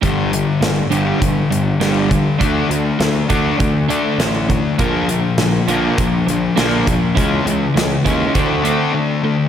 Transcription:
<<
  \new Staff \with { instrumentName = "Clean electric guitar" } { \clef bass \time 4/4 \key g \minor \tempo 4 = 101 <g, d g>8 <g, d>8 <g, d>8 <g, d g>8 <g, d>8 <g, d>8 <g, d g>8 d8 | <d a d'>8 <d a>8 <d a>8 <d a d'>8 <d a>8 <d a d'>8 <d a>8 <d a>8 | <bes, d bes>8 <bes, d>8 <bes, d>8 <bes, d bes>8 bes,8 <bes, d>8 <bes, d bes>8 <bes, d>8 | <cis e gis>8 <cis e>8 <cis e>8 <cis e gis>8 <d a c'>8 <d a c'>8 <d a>8 <d a>8 | }
  \new Staff \with { instrumentName = "Distorted electric guitar" } { \clef bass \time 4/4 \key g \minor <g, d g>8 <g, d>8 <g, d>8 <g, d g>8 <g, d>8 <g, d>8 <g, d g>8 <g, d>8 | <d a d'>8 <d a>8 <d a>8 <d a d'>8 <d a>8 <d a d'>8 <d a>8 <d a>8 | <bes, f bes>8 <bes, f>8 <bes, f>8 <bes, f bes>8 <bes, f>8 <bes, f>8 <bes, f bes>8 <bes, f>8 | <cis gis cis'>8 <cis gis>8 <cis gis>8 <cis gis cis'>8 <d a d'>8 <d a d'>8 <d a>8 <d a>8 | }
  \new Staff \with { instrumentName = "Picked electric bass" } { \clef bass \time 4/4 \key g \minor g,,4 g,,8 g,,8 g,,8 g,,8 g,,4 | d,8 d,8 d,8 d,8 d,4 a,,4 | bes,,4 bes,,8 bes,,8 bes,,8 bes,,8 bes,,4 | cis,8 cis,8 cis,8 ees,8 d,4 r4 | }
  \new DrumStaff \with { instrumentName = "Drums" } \drummode { \time 4/4 <hh bd>8 hh8 <hh sn>8 hh8 <hh bd>8 hh8 <hh sn>8 <hh bd>8 | <hh bd>8 hh8 <hh sn>8 <hh bd>8 <hh bd>8 hh8 <hh sn>8 <hh bd>8 | <hh bd>8 hh8 <hh sn>8 hh8 <hh bd>8 hh8 <hh sn>8 <hh bd>8 | <hh bd>8 hh8 <hh sn>8 <hh bd>8 <hh bd>8 hh8 r4 | }
>>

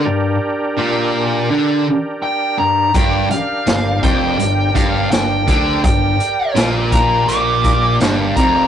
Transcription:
<<
  \new Staff \with { instrumentName = "Lead electric guitar" } { \time 4/4 \key g \minor \tempo 4 = 83 r2. g''8 bes''8 | g''8 f''4 g''4 f''8 g''4 | g''4 r8 bes''8 d'''4 r8 bes''8 | }
  \new Staff \with { instrumentName = "Tonewheel organ" } { \time 4/4 \key g \minor <d' g' bes'>1 | <d' g' bes'>1 | <g' bes' d''>1 | }
  \new Staff \with { instrumentName = "Distorted electric guitar" } { \clef bass \time 4/4 \key g \minor g,8 r8 bes,4 d8 r4 g,8 | g,8 r8 g,8 f,8 g,8 g,8 g,8 d8 | g,8 r8 bes,4 bes,4 g,8 f,8 | }
  \new Staff \with { instrumentName = "Fingered electric bass" } { \clef bass \time 4/4 \key g \minor r1 | g,,8 r8 g,,8 f,,8 g,,8 g,,8 g,,8 d,8 | g,,8 r8 bes,,4 bes,,4 g,,8 f,,8 | }
  \new DrumStaff \with { instrumentName = "Drums" } \drummode { \time 4/4 r4 r4 r4 r4 | <hh bd>8 hh8 <hh sn>8 <hh bd>8 hh8 <hh bd>8 <hh sn>8 <hh bd>8 | <hh bd>8 hh8 <hh sn>8 <hh bd>8 hh8 <hh bd>8 <hh sn>8 <hh bd>8 | }
>>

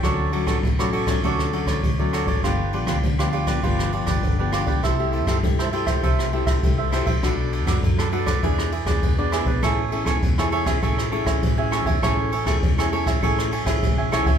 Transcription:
<<
  \new Staff \with { instrumentName = "Cavaquinho" } { \time 4/4 \key a \major \tempo 4 = 100 <fis' a' cis'' d''>8 <fis' a' cis'' d''>16 <fis' a' cis'' d''>16 r16 <fis' a' cis'' d''>16 <fis' a' cis'' d''>16 <a' cis'' d''>16 <fis' a' cis'' d''>8 <fis' a' cis'' d''>16 <a' cis'' d''>8 <a' cis'' d''>16 <fis' a' cis'' d''>16 <a' cis'' d''>16 | <f' g' b' d''>8 <f' g' b' d''>16 <f' g' b' d''>16 r16 <f' g' b' d''>16 <f' g' b' d''>16 <g' b' d''>16 <f' g' b' d''>8 <f' g' b' d''>16 <g' b' d''>8 <g' b' d''>16 <f' g' b' d''>16 <g' b' d''>16 | <e' a' c'' e''>8 <e' a' c'' e''>16 <e' a' c'' e''>16 r16 <e' a' c'' e''>16 <e' a' c'' e''>16 <a' c'' e''>16 <e' a' c'' e''>8 <e' a' c'' e''>16 <a' c'' e''>8 <a' c'' e''>16 <e' a' c'' e''>16 <a' c'' e''>16 | <d' a' b' d''>8 <d' a' b' d''>16 <d' a' b' d''>16 r16 <d' a' b' d''>16 <d' a' b' d''>16 <a' b' d''>16 <e' gis' b' d''>8 <e' gis' b' d''>16 <gis' b' d''>8 <gis' b' d''>16 <e' gis' b' d''>16 <gis' b' d''>16 |
<a' cis'' e'' gis''>8 <a' cis'' e'' gis''>16 <a' cis'' e'' gis''>16 r16 <a' cis'' e'' gis''>16 <a' cis'' e'' gis''>16 <cis'' e'' gis''>16 <a' cis'' e'' gis''>8 <a' cis'' e'' gis''>16 <cis'' e'' gis''>8 <cis'' e'' gis''>16 <a' cis'' e'' gis''>16 <cis'' e'' gis''>16 | <a' cis'' e'' gis''>8 <a' cis'' e'' gis''>16 <a' cis'' e'' gis''>16 r16 <a' cis'' e'' gis''>16 <a' cis'' e'' gis''>16 <cis'' e'' gis''>16 <a' cis'' e'' gis''>8 <a' cis'' e'' gis''>16 <cis'' e'' gis''>8 <cis'' e'' gis''>16 <a' cis'' e'' gis''>16 <cis'' e'' gis''>16 | }
  \new Staff \with { instrumentName = "Nylon-string guitar" } { \time 4/4 \key a \major << { <fis a cis'>8 <fis a cis'>8 r16 <fis a cis'>8 <fis a cis'>16 <fis a cis'>8 <fis a cis'>8 r16 <fis a cis'>8. | <f b d'>16 r16 <f b d'>8. <f b d'>8 <f b d'>16 <f b d'>8 <f b d'>8 r16 <f b d'>8. | <a e' g'>16 <a e' g'>8 <a e' g'>16 <a e' g'>16 r16 <a e' g'>4 <a e' g'>8 <a e' g'>16 r16 <a e' g'>16 r16 | <a d' fis'>8. <a d' fis'>8. <a d' fis'>16 r16 <b d' gis'>8 r16 <b d' gis'>8 <b d' gis'>8. |
<cis' e' gis'>16 r16 <cis' e' gis'>8. <cis' e' gis'>8 <cis' e' gis'>16 <cis' e' gis'>8 <cis' e' gis'>8. <cis' e' gis'>8. | <cis' e' gis'>8 r16 <cis' e' gis'>8 <cis' e' gis'>8. <cis' e' gis'>8 r16 <cis' e' gis'>8. <cis' e' gis'>16 r16 | } \\ { d4 a,4 d4 r4 | g,4 d4 g,4 d4 | c4 g,4 c4 g,4 | b,4 fis,4 e4 b,4 |
a4 e4 a4 e4 | a4 e4 a4 e4 | } >> }
  \new Staff \with { instrumentName = "Fingered electric bass" } { \clef bass \time 4/4 \key a \major d,8. a,,16 a,,4 d,8. d,16 d,8. gis,,16 | g,,8. d,16 d,4 g,,8. g,,16 g,,8. a,,16 | c,8. g,16 g,4 c,8. c,16 c,8. bes,,16 | b,,8. fis,16 fis,4 e,8. e,16 e,8. b,,16 |
a,,8. e,16 e,4 a,,8. a,,16 a,,8. e,16 | a,,8. e,16 e,4 a,,8. a,,16 a,,8 b,,16 cis,16 | }
  \new DrumStaff \with { instrumentName = "Drums" } \drummode { \time 4/4 <bd cymr ss>8 cymr16 <bd cymr ss>16 <bd cymr>16 ss16 cymr16 <bd cymr ss>16 <bd cymr>16 ss16 cymr16 <bd cymr ss>16 <bd cymr>8 <cymr ss>16 <bd cymr>16 | <bd cymr ss>8 cymr16 <bd cymr ss>16 <bd cymr>16 ss16 cymr16 <bd cymr ss>16 <bd cymr>16 ss16 cymr16 <bd cymr ss>16 <bd cymr>8 <cymr ss>16 <bd cymr>16 | <bd cymr ss>8 cymr16 <bd cymr ss>16 <bd cymr>16 ss16 cymr16 <bd cymr ss>16 <bd cymr>16 ss16 cymr16 <bd cymr ss>16 <bd cymr>8 <cymr ss>16 <bd cymr>16 | <bd cymr ss>8 cymr16 <bd cymr ss>16 <bd cymr>16 ss16 cymr16 <bd cymr ss>16 <bd cymr>16 ss16 cymr16 <bd cymr ss>16 <bd cymr>8 <cymr ss>16 <bd cymr>16 |
<bd cymr ss>8 cymr16 <bd cymr ss>16 <bd cymr>16 ss16 cymr16 <bd cymr ss>16 <bd cymr>16 ss16 cymr16 <bd cymr ss>16 <bd cymr>8 <cymr ss>16 <bd cymr>16 | <bd cymr ss>8 cymr16 <bd cymr ss>16 <bd cymr>16 ss16 cymr16 <bd cymr ss>16 <bd cymr>16 ss16 cymr16 <bd cymr ss>16 <bd cymr>8 <cymr ss>16 <bd cymr>16 | }
>>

